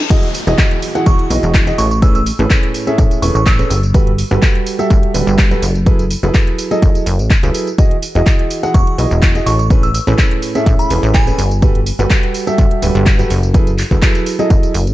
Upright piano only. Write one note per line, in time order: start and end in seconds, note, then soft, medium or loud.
0.10 0.26 E3 medium
0.10 0.26 E4 medium
0.10 0.26 F#4 medium
0.10 0.26 G#4 medium
0.10 0.26 D#5 loud
0.47 0.92 E3 medium
0.47 0.92 E4 medium
0.47 0.92 F#4 medium
0.47 0.92 G#4 medium
0.47 0.92 D#5 medium
0.95 1.28 E3 medium
0.95 1.28 E4 medium
0.95 1.28 F#4 medium
0.95 1.28 G#4 medium
0.95 1.28 F#5 loud
1.30 1.64 E3 medium
1.30 1.64 E4 medium
1.30 1.64 F#4 medium
1.30 1.64 G#4 medium
1.30 1.64 D#5 medium
1.67 1.81 E3 medium
1.67 1.81 E4 medium
1.67 1.81 F#4 medium
1.67 1.81 G#4 medium
1.67 1.81 D#5 loud
2.02 2.18 A2 medium
2.02 2.18 C#4 medium
2.02 2.18 G#4 medium
2.02 2.18 A4 medium
2.02 2.18 B4 loud
2.39 2.84 A2 medium
2.39 2.84 C#4 medium
2.39 2.84 G#4 medium
2.39 2.84 A4 medium
2.39 2.84 B4 medium
2.87 3.20 A2 loud
2.87 3.20 C#4 medium
2.87 3.20 G#4 medium
2.87 3.20 A4 medium
2.87 3.20 E5 loud
3.22 3.56 A2 medium
3.22 3.56 C#4 medium
3.22 3.56 G#4 medium
3.22 3.56 A4 medium
3.22 3.56 B4 medium
3.59 3.69 C#4 medium
3.59 3.69 G#4 medium
3.59 3.69 A4 medium
3.59 3.69 B4 medium
3.94 4.10 G3 medium
3.94 4.10 F#4 medium
3.94 4.10 G4 medium
3.94 4.10 A4 medium
3.94 4.10 B4 loud
4.31 4.76 G3 medium
4.31 4.76 F#4 medium
4.31 4.76 G4 medium
4.31 4.76 A4 medium
4.31 4.76 B4 medium
4.79 5.12 G3 loud
4.79 5.12 F#4 medium
4.79 5.12 G4 medium
4.79 5.12 A4 medium
4.79 5.12 E5 loud
5.14 5.48 G3 medium
5.14 5.48 F#4 medium
5.14 5.48 G4 medium
5.14 5.48 A4 medium
5.14 5.48 B4 medium
5.51 5.61 F#3 medium
5.51 5.61 F#4 medium
5.51 5.61 G4 medium
5.51 5.61 A4 medium
5.51 5.61 B4 loud
5.86 6.02 F#3 medium
5.86 6.02 E4 medium
5.86 6.02 G#4 medium
5.86 6.02 A4 medium
5.86 6.02 B4 loud
6.23 6.68 F#3 medium
6.23 6.68 E4 medium
6.23 6.68 G#4 medium
6.23 6.68 A4 medium
6.23 6.68 B4 medium
6.71 7.04 F#3 loud
6.71 7.04 E4 medium
6.71 7.04 G#4 medium
6.71 7.04 A4 medium
6.71 7.04 D#5 loud
7.43 7.67 F#3 medium
7.43 7.67 E4 medium
7.43 7.67 G#4 medium
7.43 7.67 A4 medium
7.43 7.67 B4 loud
7.78 7.94 E3 medium
7.78 7.94 E4 medium
7.78 7.94 F#4 medium
7.78 7.94 G#4 medium
7.78 7.94 D#5 loud
8.15 8.60 E3 medium
8.15 8.60 E4 medium
8.15 8.60 F#4 medium
8.15 8.60 G#4 medium
8.15 8.60 D#5 medium
8.63 8.96 E3 loud
8.63 8.96 E4 medium
8.63 8.96 F#4 medium
8.63 8.96 G#4 medium
8.63 8.96 F#5 loud
8.98 9.32 E3 medium
8.98 9.32 E4 medium
8.98 9.32 F#4 medium
8.98 9.32 G#4 medium
8.98 9.32 D#5 medium
9.35 9.50 E3 medium
9.35 9.50 E4 medium
9.35 9.50 F#4 medium
9.35 9.49 G#4 medium
9.35 9.50 D#5 loud
9.70 9.86 A2 loud
9.70 9.86 C#4 medium
9.70 9.86 G#4 medium
9.70 9.86 A4 medium
9.70 9.86 B4 loud
10.07 10.52 A2 medium
10.07 10.52 C#4 medium
10.07 10.52 G#4 medium
10.07 10.52 A4 medium
10.07 10.52 B4 medium
10.55 10.88 A2 loud
10.55 10.88 C#4 medium
10.55 10.88 G#4 medium
10.55 10.88 A4 medium
10.55 10.88 E5 loud
10.90 11.24 A2 medium
10.90 11.24 C#4 medium
10.90 11.24 G#4 medium
10.90 11.24 A4 medium
10.90 11.24 B4 medium
11.27 11.37 C#4 medium
11.27 11.37 G#4 medium
11.27 11.37 A4 medium
11.27 11.37 B4 loud
11.62 11.78 G3 medium
11.62 11.78 F#4 medium
11.62 11.78 G4 medium
11.62 11.78 A4 medium
11.62 11.78 B4 loud
11.99 12.44 G3 medium
11.99 12.44 F#4 medium
11.99 12.44 G4 medium
11.99 12.44 A4 medium
11.99 12.44 B4 medium
12.47 12.80 G3 medium
12.47 12.80 F#4 medium
12.47 12.80 G4 medium
12.47 12.80 A4 medium
12.47 12.80 E5 loud
12.82 13.16 G3 medium
12.82 13.16 F#4 medium
12.82 13.16 G4 medium
12.82 13.16 A4 medium
12.82 13.16 B4 medium
13.19 13.29 F#3 medium
13.19 13.29 F#4 medium
13.19 13.29 G4 medium
13.19 13.29 A4 medium
13.19 13.29 B4 loud
13.54 13.70 F#3 medium
13.54 13.70 E4 medium
13.54 13.70 G#4 medium
13.54 13.70 A4 medium
13.54 13.70 B4 loud
13.91 14.36 F#3 medium
13.91 14.36 E4 medium
13.91 14.36 G#4 medium
13.91 14.36 A4 medium
13.91 14.36 B4 medium
14.39 14.72 F#3 loud
14.39 14.72 E4 medium
14.39 14.72 G#4 medium
14.39 14.72 A4 medium
14.39 14.72 D#5 loud